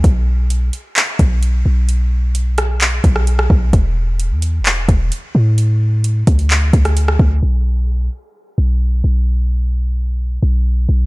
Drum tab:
HH |x---x-x-x-x-x---|x---x-x-x-x-x---|x---x-x-x-x-x---|x---x-xxx-xxx---|
CP |--------x-------|--------x-------|--------x-------|--------x-------|
SD |----------------|------r----r-r--|----------------|-----------r-r--|
BD |o---------o-----|----------o---o-|o---------o-----|------o---o---o-|

HH |----------------|----------------|
CP |----------------|----------------|
SD |----------------|----------------|
BD |----------------|----------------|